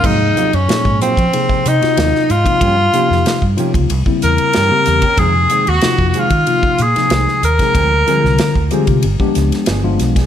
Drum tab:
CC |x---------------|----------------|----------------|----------------|
RD |--xxx-xxx-xxx-xx|x-x-x-xxx-xxx-xx|x-xxx-xxx-xxx-xx|x-x-x-xxx-xxx-xx|
HH |--p---p---p---p-|--p---p---p---p-|--p---p---p---p-|--p---p---p---p-|
SD |----o------ooo--|---oo-------o-o-|----o------ooo-o|---oo-----ooo-oo|
BD |o----o-o-o-----o|o----o-o-o-----o|o----o-o-o-----o|o----o-o-o-----o|